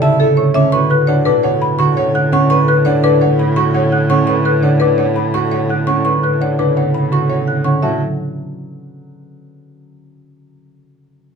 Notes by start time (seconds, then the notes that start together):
Already playing: A2 C#3 G3 A3 B3
0.01 D3 E4 E5 A5
0.19 A3 A4 E5
0.37 C#5 C#6
0.54 D3 C#4 E5 D6
0.72 A2 F#4 B4 C#6
0.90 B4 F#6
1.07 D3 D4 C#5 F#5
1.25 B2 D4 B4 D6
1.43 B3 C#5 F#5
1.62 B5
1.79 D3 F#4 C#6
1.97 C#4 C#5 F#5
2.15 F#5 F#6
2.32 D3 C#4 F#5 C#6
2.50 B4 C#6
2.68 B4 F#6
2.85 D3 D4 C#5 F#5
3.03 D4 B4 D6
3.21 B3 C#5 F#5
3.39 B5
3.56 D3 F#4 C#6
3.74 C#4 C#5 F#5
3.92 F#5 F#6
4.10 D3 C#4 F#5 C#6
4.27 B4 C#6
4.45 B4 F#6
4.63 D3 D4 C#5 F#5
4.80 D4 B4 D6
4.98 B3 C#5 F#5
5.16 B5
5.34 D3 F#4 C#6
5.52 C#4 C#5 F#5
5.70 F#5 F#6
5.87 D3 C#4 F#5 C#6
6.05 B4 C#6
6.23 B4 F#6
6.41 D3 D4 C#5 F#5
6.59 C#3 D4 B4 D6
6.77 B3 C#5 F#5
6.94 B5
7.12 D3 F#4 C#6
7.30 C#4 C#5 F#5
7.47 F#5 F#6
7.64 D3 C#4 F#5 C#6
7.82 A2 F#3 F#4 E5 A5